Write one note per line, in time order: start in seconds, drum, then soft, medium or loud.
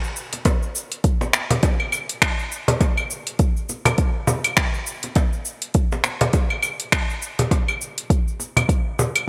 0.04 cabasa soft
0.16 cabasa medium
0.33 cajon slap soft
0.33 closed hi-hat medium
0.33 cabasa soft
0.45 kick loud
0.45 cajon slap medium
0.45 closed hi-hat soft
0.45 cabasa soft
0.63 cabasa soft
0.75 cabasa medium
0.92 closed hi-hat medium
0.92 cabasa soft
1.04 kick loud
1.04 closed hi-hat soft
1.04 cabasa soft
1.21 cajon slap medium
1.21 cabasa soft
1.33 finger snap medium
1.33 cajon slap soft
1.33 cabasa medium
1.51 cajon bass medium
1.51 closed hi-hat medium
1.51 cabasa soft
1.63 kick loud
1.63 cajon slap medium
1.63 closed hi-hat soft
1.63 cabasa soft
1.80 claves medium
1.92 cabasa medium
1.92 claves medium
2.09 closed hi-hat medium
2.09 cabasa soft
2.22 finger snap medium
2.22 kick loud
2.22 closed hi-hat soft
2.22 cabasa soft
2.39 cabasa soft
2.52 cabasa medium
2.68 cajon bass medium
2.68 closed hi-hat medium
2.68 cabasa soft
2.81 kick loud
2.81 cajon slap medium
2.81 closed hi-hat soft
2.81 cabasa soft
2.97 cabasa soft
2.97 claves medium
3.10 cabasa medium
3.27 closed hi-hat medium
3.27 cabasa soft
3.39 kick loud
3.39 closed hi-hat soft
3.39 cabasa soft
3.57 cabasa soft
3.69 cajon slap soft
3.69 cabasa medium
3.85 cajon bass loud
3.85 closed hi-hat medium
3.85 cabasa soft
3.85 claves medium
3.98 kick loud
3.98 closed hi-hat soft
3.98 cabasa soft
4.27 cajon bass loud
4.27 cabasa medium
4.44 closed hi-hat medium
4.44 cabasa soft
4.44 claves medium
4.57 finger snap medium
4.57 kick loud
4.57 closed hi-hat soft
4.57 cabasa soft
4.74 cabasa soft
4.86 cabasa medium
5.03 cajon slap soft
5.03 closed hi-hat medium
5.03 cabasa soft
5.15 kick loud
5.15 cajon slap medium
5.15 closed hi-hat soft
5.15 cabasa soft
5.33 cabasa soft
5.45 cabasa medium
5.62 closed hi-hat medium
5.62 cabasa soft
5.74 kick loud
5.74 closed hi-hat soft
5.74 cabasa soft
5.92 cajon slap medium
5.92 cabasa soft
6.04 finger snap medium
6.04 cajon slap soft
6.04 cabasa medium
6.21 cajon bass medium
6.21 closed hi-hat medium
6.21 cabasa soft
6.33 kick loud
6.33 cajon slap medium
6.33 closed hi-hat soft
6.33 cabasa soft
6.50 claves medium
6.63 cabasa medium
6.63 claves medium
6.80 closed hi-hat medium
6.80 cabasa soft
6.92 finger snap medium
6.92 kick loud
6.92 closed hi-hat soft
6.92 cabasa soft
7.10 cabasa soft
7.22 cabasa medium
7.39 cajon bass medium
7.39 closed hi-hat medium
7.39 cabasa soft
7.51 kick loud
7.51 cajon slap medium
7.51 closed hi-hat soft
7.51 cabasa soft
7.68 cabasa soft
7.68 claves medium
7.81 cabasa medium
7.98 closed hi-hat medium
7.98 cabasa soft
8.10 kick loud
8.10 closed hi-hat soft
8.10 cabasa soft
8.28 cabasa soft
8.40 cajon slap soft
8.40 cabasa medium
8.57 cajon bass medium
8.57 closed hi-hat medium
8.57 cabasa soft
8.57 claves medium
8.69 kick loud
8.69 closed hi-hat soft
8.69 cabasa soft
8.99 cajon bass medium
8.99 cabasa medium
9.16 closed hi-hat medium
9.16 cabasa soft
9.16 claves medium